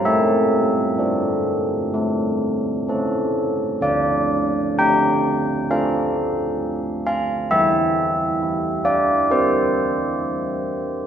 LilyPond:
\new Staff \with { instrumentName = "Church bells" } { \time 4/4 \key d \minor \tempo 4 = 65 << { e''2.~ e''8 r8 | d''4 g''4 f''4. f''8 | e''4. d''8 c''4. r8 | } \\ { a4 <d' a'>4 a4 <cis' a'>4 | d4 a4 <d' a'>2 | e4 e'4 g'2 | } >> }